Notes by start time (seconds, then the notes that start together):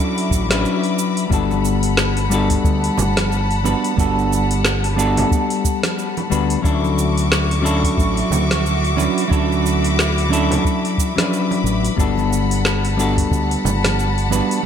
Already playing: F#3 C#4 D4 E4 F#4 A4 E5 B5 D6
0.00 cabasa
0.18 open hi-hat, cabasa
0.31 A1, kick, cabasa
0.49 F#3 C#4 D4 E4 B4, snare, open hi-hat, cabasa
0.65 cabasa
0.83 open hi-hat, cabasa
0.99 cabasa
1.17 open hi-hat, cabasa
1.30 G1 G3 B3 D4 F#4 A4 F#5 A5, kick, cabasa
1.51 muted conga, cabasa
1.65 cabasa
1.83 open hi-hat, cabasa
1.97 snare, cabasa
2.17 open hi-hat, cabasa
2.30 G3 B3 D4 F#4, cabasa
2.34 A4
2.50 kick, open hi-hat, cabasa
2.64 D2, kick, cabasa
2.84 open hi-hat, cabasa
2.98 G1, low conga, cabasa
3.16 snare, open hi-hat, high conga, cabasa
3.32 cabasa
3.51 open hi-hat, cabasa
3.64 G3 B3 D4 F#4 B4, muted conga, cabasa
3.84 open hi-hat, cabasa
3.96 G1 G3 B3 D4 F#4 A4, kick, cabasa
4.19 cabasa
4.33 cabasa
4.51 open hi-hat, cabasa
4.65 snare, cabasa
4.84 open hi-hat, cabasa
4.96 G3 B3 D4 F#4 A4, cabasa
5.17 open hi-hat, low conga, cabasa
5.31 kick, cabasa
5.50 open hi-hat, cabasa
5.65 kick, cabasa
5.83 snare, open hi-hat, high conga, cabasa
5.99 cabasa
6.17 open hi-hat, muted conga, cabasa
6.30 D2 G3 B3 D4 F#4 B4, cabasa
6.50 open hi-hat, cabasa
6.62 D2 F#3 C#4 D4 E4 F#4 E5 C#6 D6, kick, cabasa
6.66 A4
6.84 muted conga, cabasa
6.99 cabasa
7.18 open hi-hat, cabasa
7.32 snare, cabasa
7.51 open hi-hat, cabasa
7.61 F#3 C#4 D4 E4 A4
7.66 cabasa
7.84 kick, open hi-hat, cabasa
7.98 A1, kick, cabasa
8.17 open hi-hat, cabasa
8.30 D2, low conga, cabasa
8.51 snare, open hi-hat, high conga, cabasa
8.66 cabasa
8.84 open hi-hat, cabasa
8.96 F#3 C#4 D4 E4 B4, muted conga, cabasa
9.18 open hi-hat, cabasa
9.28 D2 F#3 C#4 D4 E4 B5, kick
9.32 A4, cabasa
9.52 cabasa
9.66 cabasa
9.84 open hi-hat, cabasa
9.99 snare, cabasa
10.18 open hi-hat, cabasa
10.29 F#3 C#4 D4 E4 A4, cabasa
10.51 open hi-hat, low conga, cabasa
10.65 kick, cabasa
10.85 open hi-hat, cabasa
10.98 kick, cabasa
11.16 F#3 C#4 D4 E4 B4, snare, open hi-hat, high conga, cabasa
11.33 cabasa
11.51 open hi-hat, muted conga, cabasa
11.64 A1, cabasa
11.85 open hi-hat, cabasa
11.96 G1 G3 B3 D4 F#4 A4 F#5 A5, kick, cabasa
12.18 muted conga, cabasa
12.33 cabasa
12.51 open hi-hat, cabasa
12.65 snare, cabasa
12.85 open hi-hat, cabasa
12.97 G3 B3 D4 F#4 A4, cabasa
13.17 kick, open hi-hat, cabasa
13.31 D2, kick, cabasa
13.51 open hi-hat, cabasa
13.65 G1, low conga, cabasa
13.84 snare, open hi-hat, high conga, cabasa
13.99 cabasa
14.18 open hi-hat, cabasa
14.30 G3 B3 D4 F#4 B4, muted conga, cabasa
14.51 open hi-hat, cabasa